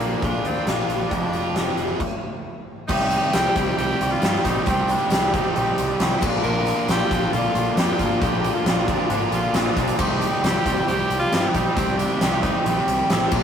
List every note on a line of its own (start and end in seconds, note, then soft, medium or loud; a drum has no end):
0.00 0.14 A#1 medium
0.00 0.43 A#2 medium
0.00 0.44 D3 medium
0.00 0.25 A#3 medium
0.00 0.44 A#3 loud
0.00 1.11 A#3 medium
0.00 0.44 D4 medium
0.00 0.44 D4 loud
0.00 0.21 F4 medium
0.00 0.43 F4 loud
0.00 closed hi-hat medium
0.22 0.37 A#1 medium
0.22 0.49 D4 loud
0.22 0.66 F4 medium
0.22 kick loud
0.22 closed hi-hat medium
0.43 0.59 D#2 medium
0.43 0.66 D3 medium
0.43 0.66 A#3 medium
0.43 0.70 C4 loud
0.43 0.66 D4 medium
0.43 0.65 F4 medium
0.43 closed hi-hat medium
0.48 0.65 A#2 medium
0.66 0.81 A#1 medium
0.66 1.10 A#2 medium
0.66 1.10 D3 medium
0.66 1.11 A#3 medium
0.66 2.46 D4 loud
0.66 1.11 D4 medium
0.66 snare loud
0.66 closed hi-hat medium
0.70 1.12 F4 medium
0.88 1.03 A#1 medium
0.88 1.12 D4 medium
0.88 closed hi-hat medium
1.10 1.26 F1 medium
1.10 1.98 F2 loud
1.10 1.99 C3 medium
1.10 1.99 F3 medium
1.10 2.00 G#3 medium
1.10 2.00 C4 medium
1.10 2.00 F4 loud
1.10 kick medium
1.10 closed hi-hat medium
1.32 1.47 F1 medium
1.32 2.00 F4 medium
1.32 closed hi-hat medium
1.53 1.69 F1 medium
1.53 2.00 C4 medium
1.53 snare loud
1.53 closed hi-hat medium
1.77 1.92 F1 medium
1.77 2.00 G#3 medium
1.77 closed hi-hat medium
2.00 kick loud
2.00 crash medium
2.88 3.16 C2 medium
2.88 3.32 C3 loud
2.88 3.33 D#3 loud
2.88 3.34 G3 loud
2.88 3.34 C4 loud
2.88 3.30 D#4 loud
2.88 3.35 G4 loud
2.88 kick loud
2.88 crash loud
2.88 tambourine medium
3.10 closed hi-hat medium
3.10 tambourine medium
3.33 3.47 C2 medium
3.33 3.55 C3 medium
3.33 3.55 D#3 medium
3.33 3.56 G3 medium
3.33 3.57 C4 medium
3.33 3.75 G4 loud
3.33 3.57 G4 loud
3.33 snare loud
3.33 closed hi-hat medium
3.33 tambourine loud
3.56 3.70 C2 medium
3.56 3.76 C3 medium
3.56 3.77 D#3 medium
3.56 3.77 G3 medium
3.56 3.77 C4 medium
3.56 3.78 G4 loud
3.56 kick medium
3.56 closed hi-hat medium
3.56 tambourine soft
3.77 3.92 C2 medium
3.77 4.20 C3 loud
3.77 4.21 D#3 loud
3.77 4.21 G3 loud
3.77 4.22 C4 medium
3.77 4.13 G4 loud
3.77 4.23 G4 loud
3.77 closed hi-hat medium
4.01 4.14 C2 medium
4.01 closed hi-hat medium
4.12 4.43 F4 loud
4.22 4.36 G2 medium
4.22 4.42 C3 medium
4.22 4.43 D#3 medium
4.22 4.44 G3 medium
4.22 4.44 C4 medium
4.22 4.45 G4 medium
4.22 snare loud
4.22 closed hi-hat medium
4.22 tambourine medium
4.35 snare soft
4.44 4.58 A#1 medium
4.44 4.65 C3 medium
4.44 4.65 D#3 medium
4.44 4.66 G3 medium
4.44 4.66 C4 medium
4.44 4.69 D#4 medium
4.44 4.66 G4 medium
4.44 kick medium
4.44 closed hi-hat medium
4.44 tambourine medium
4.66 4.94 C2 loud
4.66 5.09 C3 loud
4.66 5.10 D#3 loud
4.66 5.11 G3 loud
4.66 4.92 C4 medium
4.66 5.11 C4 loud
4.66 5.12 G4 loud
4.66 kick loud
4.66 closed hi-hat medium
4.66 tambourine medium
4.88 5.28 D4 loud
4.88 closed hi-hat medium
4.88 tambourine medium
5.10 5.38 C2 medium
5.10 5.31 C3 medium
5.10 5.32 D#3 medium
5.10 5.32 G3 medium
5.10 5.33 C4 medium
5.10 5.33 G4 medium
5.10 snare loud
5.10 closed hi-hat medium
5.10 tambourine loud
5.28 5.38 D4 medium
5.32 5.54 C3 medium
5.32 5.54 D#3 medium
5.32 5.55 G3 medium
5.32 5.55 C4 medium
5.32 5.55 G4 medium
5.32 kick medium
5.32 closed hi-hat medium
5.32 tambourine soft
5.36 6.01 D#4 loud
5.55 5.69 A#1 loud
5.55 5.98 C3 loud
5.55 5.98 D#3 loud
5.55 5.99 G3 loud
5.55 5.99 C4 loud
5.55 6.00 G4 loud
5.55 closed hi-hat medium
5.78 5.92 C2 medium
5.78 closed hi-hat medium
5.78 tambourine medium
5.99 6.13 C2 medium
5.99 6.20 C3 medium
5.99 6.21 D#3 medium
5.99 6.21 G3 medium
5.99 6.21 C4 medium
5.99 6.21 G4 loud
5.99 snare loud
5.99 closed hi-hat medium
5.99 tambourine medium
6.12 snare soft
6.21 6.36 A#1 medium
6.21 6.43 A#2 medium
6.21 6.43 D3 medium
6.21 6.44 A#3 loud
6.21 6.45 D4 medium
6.21 6.45 F4 medium
6.21 kick loud
6.21 tambourine medium
6.21 crash loud
6.43 6.70 A#1 loud
6.43 6.88 A#2 loud
6.43 6.88 D3 loud
6.43 6.89 A#3 loud
6.43 6.90 D4 loud
6.43 6.90 F4 loud
6.43 6.85 A#4 loud
6.43 tambourine medium
6.65 closed hi-hat medium
6.65 tambourine medium
6.88 7.02 A#1 loud
6.88 7.09 A#2 medium
6.88 7.09 D3 loud
6.88 7.10 A#3 medium
6.88 7.11 D4 loud
6.88 7.12 F4 loud
6.88 7.31 G4 loud
6.88 snare loud
6.88 closed hi-hat medium
6.88 tambourine medium
7.10 7.24 A#1 medium
7.10 7.30 A#2 medium
7.10 7.31 D3 medium
7.10 7.32 A#3 medium
7.10 7.33 D4 medium
7.10 7.32 F4 medium
7.10 kick medium
7.10 closed hi-hat medium
7.10 tambourine soft
7.31 7.46 A#1 medium
7.31 7.75 A#2 loud
7.31 7.76 D3 loud
7.31 7.76 A#3 loud
7.31 7.77 D4 loud
7.31 7.78 F4 loud
7.31 7.77 F4 loud
7.31 closed hi-hat medium
7.54 7.68 A#1 medium
7.54 closed hi-hat medium
7.54 tambourine medium
7.76 7.90 F2 medium
7.76 7.97 A#2 medium
7.76 7.97 D3 medium
7.76 7.97 A#3 medium
7.76 7.99 D4 medium
7.76 7.99 F4 loud
7.76 8.02 G4 loud
7.76 snare loud
7.76 closed hi-hat medium
7.76 tambourine medium
7.98 8.13 G#1 medium
7.98 8.19 A#2 medium
7.98 8.20 D3 medium
7.98 8.21 A#3 medium
7.98 8.22 D4 medium
7.98 8.22 F4 medium
7.98 8.23 F4 medium
7.98 kick medium
7.98 closed hi-hat medium
7.98 tambourine medium
8.20 8.49 A#1 medium
8.20 8.64 A#2 loud
8.20 8.65 D3 loud
8.20 8.66 A#3 loud
8.20 8.67 D4 loud
8.20 8.67 F4 loud
8.20 8.55 G4 loud
8.20 kick loud
8.20 closed hi-hat medium
8.20 tambourine medium
8.44 closed hi-hat medium
8.44 tambourine medium
8.55 8.89 F4 medium
8.65 8.92 A#1 medium
8.65 8.87 A#2 medium
8.65 8.87 D3 medium
8.65 8.88 A#3 medium
8.65 8.90 D4 medium
8.65 8.89 F4 loud
8.65 snare loud
8.65 closed hi-hat medium
8.65 tambourine medium
8.88 9.09 A#2 medium
8.88 9.09 D3 medium
8.88 9.10 A#3 medium
8.88 9.10 D4 medium
8.88 9.11 D4 medium
8.88 9.11 F4 medium
8.88 kick medium
8.88 closed hi-hat medium
9.09 9.23 G#1 medium
9.09 9.52 A#2 loud
9.09 9.53 D3 loud
9.09 9.54 A#3 medium
9.09 9.20 D4 medium
9.09 9.55 D4 loud
9.09 9.55 F4 loud
9.09 closed hi-hat medium
9.09 tambourine soft
9.31 9.45 A#1 medium
9.31 9.75 F4 medium
9.31 closed hi-hat medium
9.31 tambourine medium
9.53 9.67 A#1 medium
9.53 9.75 A#2 medium
9.53 9.76 D3 medium
9.53 9.76 A#3 medium
9.53 9.77 D4 loud
9.53 9.77 F4 loud
9.53 snare loud
9.53 closed hi-hat medium
9.53 tambourine medium
9.66 snare soft
9.76 9.90 B1 medium
9.76 9.98 A#2 medium
9.76 9.98 D3 medium
9.76 9.98 A#3 medium
9.76 10.00 D4 medium
9.76 9.99 F4 medium
9.76 kick medium
9.76 closed hi-hat medium
9.76 tambourine medium
9.88 closed hi-hat medium
9.98 10.26 C2 medium
9.98 10.42 C3 loud
9.98 10.42 D#3 loud
9.98 10.43 G3 loud
9.98 10.44 C4 loud
9.98 10.45 D#4 loud
9.98 10.44 G4 loud
9.98 kick loud
9.98 tambourine medium
9.98 crash medium
10.20 closed hi-hat medium
10.20 tambourine medium
10.42 10.56 C2 medium
10.42 10.64 C3 medium
10.42 10.64 D#3 loud
10.42 10.65 G3 medium
10.42 10.65 C4 medium
10.42 10.87 G4 loud
10.42 10.66 G4 medium
10.42 snare loud
10.42 closed hi-hat medium
10.42 tambourine medium
10.65 10.79 C2 medium
10.65 10.86 C3 medium
10.65 10.87 D#3 medium
10.65 10.87 G3 loud
10.65 10.88 C4 medium
10.65 10.88 G4 medium
10.65 kick medium
10.65 closed hi-hat medium
10.65 tambourine soft
10.87 11.01 C2 medium
10.87 11.30 C3 medium
10.87 11.31 D#3 medium
10.87 11.32 G3 loud
10.87 11.32 C4 loud
10.87 11.19 G4 loud
10.87 11.33 G4 loud
10.87 closed hi-hat medium
11.10 11.24 C2 medium
11.10 closed hi-hat medium
11.10 tambourine medium
11.20 11.50 F4 loud
11.32 11.46 G2 loud
11.32 11.52 C3 medium
11.32 11.53 D#3 medium
11.32 11.54 G3 medium
11.32 11.54 C4 loud
11.32 11.55 G4 loud
11.32 snare loud
11.32 closed hi-hat medium
11.32 tambourine loud
11.49 11.55 D4 medium
11.54 11.68 A#1 medium
11.54 11.74 C3 medium
11.54 11.75 D#3 medium
11.54 11.75 G3 medium
11.54 11.76 C4 medium
11.54 11.76 D#4 loud
11.54 11.76 G4 medium
11.54 kick medium
11.54 closed hi-hat medium
11.54 tambourine medium
11.75 12.04 C2 loud
11.75 12.18 C3 medium
11.75 12.19 D#3 loud
11.75 12.20 G3 loud
11.75 11.99 C4 medium
11.75 12.20 C4 loud
11.75 12.21 G4 loud
11.75 kick loud
11.75 closed hi-hat medium
11.75 tambourine medium
11.97 12.42 D4 medium
11.97 closed hi-hat medium
11.97 tambourine medium
12.19 12.48 C2 medium
12.19 12.41 C3 medium
12.19 12.41 D#3 medium
12.19 12.42 G3 medium
12.19 12.42 C4 medium
12.19 12.43 G4 medium
12.19 snare loud
12.19 closed hi-hat medium
12.19 tambourine loud
12.42 12.63 C3 medium
12.42 12.64 D#3 medium
12.42 12.65 G3 medium
12.42 12.65 C4 medium
12.42 13.06 D#4 medium
12.42 12.66 G4 loud
12.42 kick medium
12.42 closed hi-hat medium
12.42 tambourine soft
12.64 12.78 A#1 medium
12.64 13.08 C3 medium
12.64 13.08 D#3 medium
12.64 13.09 G3 loud
12.64 13.10 C4 loud
12.64 13.10 G4 loud
12.64 closed hi-hat medium
12.87 13.01 C2 medium
12.87 closed hi-hat medium
13.09 13.24 A1 medium
13.09 13.30 C3 medium
13.09 13.31 D#3 medium
13.09 13.31 G3 loud
13.09 13.31 C4 medium
13.09 13.31 G4 loud
13.09 snare loud
13.09 closed hi-hat medium
13.09 tambourine medium
13.21 snare soft
13.31 13.43 A#1 medium
13.31 13.43 A#2 medium
13.31 13.43 D3 medium
13.31 13.43 A#3 loud
13.31 13.43 D4 loud
13.31 13.43 F4 loud
13.31 kick loud
13.31 tambourine medium
13.31 crash medium